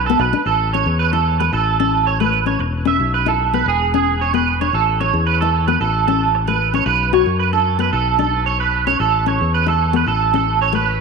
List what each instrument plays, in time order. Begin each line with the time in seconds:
Already playing: fingered electric bass B1
0.06 nylon-string guitar B3, clean electric guitar A4
0.19 fingered electric bass B1, clean electric guitar B4
0.33 nylon-string guitar D4
0.46 fingered electric bass A1, clean electric guitar A4
0.73 nylon-string guitar C#4, clean electric guitar C#5
0.86 fingered electric bass E2
0.99 clean electric guitar B4
1.13 nylon-string guitar E4, clean electric guitar A4
1.40 clean electric guitar B4, muted nylon-string guitar stroke
1.53 fingered electric bass A1, clean electric guitar A4
1.80 nylon-string guitar C#4, clean electric guitar A4
2.07 clean electric guitar C#5
2.20 nylon-string guitar A3, clean electric guitar B4
2.46 nylon-string guitar C#4, clean electric guitar C#5
2.59 fingered electric bass E1, muted clean electric guitar stroke
2.85 nylon-string guitar C#4, clean electric guitar E5
3.00 fingered electric bass B1
3.14 clean electric guitar B4
3.26 nylon-string guitar E4, clean electric guitar A4
3.54 nylon-string guitar B3, clean electric guitar B4
3.66 fingered electric bass E1, clean electric guitar G#4
3.94 nylon-string guitar C#4, clean electric guitar G#4
4.21 clean electric guitar C#5
4.34 nylon-string guitar B3, clean electric guitar B4
4.61 nylon-string guitar D4, clean electric guitar C#5
4.73 fingered electric bass A1, clean electric guitar A4
5.00 nylon-string guitar C#4, clean electric guitar C#5
5.13 fingered electric bass E2
5.27 clean electric guitar B4
5.41 nylon-string guitar E4, clean electric guitar A4
5.68 nylon-string guitar B3, clean electric guitar B4
5.80 fingered electric bass A1, clean electric guitar A4
6.07 nylon-string guitar C#4, clean electric guitar A4
6.35 muted clean electric guitar stroke
6.47 nylon-string guitar A3, clean electric guitar B4
6.74 nylon-string guitar C#4, clean electric guitar C#5
6.86 fingered electric bass B1, clean electric guitar B4
7.13 nylon-string guitar F#4, clean electric guitar C#5
7.26 fingered electric bass F#2
7.39 clean electric guitar B4
7.53 nylon-string guitar D4, clean electric guitar A4
7.79 nylon-string guitar B3, clean electric guitar B4
7.93 fingered electric bass B1, clean electric guitar A4
8.19 nylon-string guitar D4, clean electric guitar A4
8.46 clean electric guitar C#5
8.60 clean electric guitar B4
8.87 nylon-string guitar C#4, clean electric guitar C#5
9.00 fingered electric bass A1, clean electric guitar A4
9.26 nylon-string guitar C#4, clean electric guitar C#5
9.41 fingered electric bass E2
9.54 clean electric guitar B4
9.66 nylon-string guitar E4, clean electric guitar A4
9.93 nylon-string guitar B3, clean electric guitar B4
10.06 fingered electric bass A1, clean electric guitar A4
10.34 nylon-string guitar C#4, clean electric guitar A4
10.62 clean electric guitar C#5
10.73 nylon-string guitar A3, clean electric guitar B4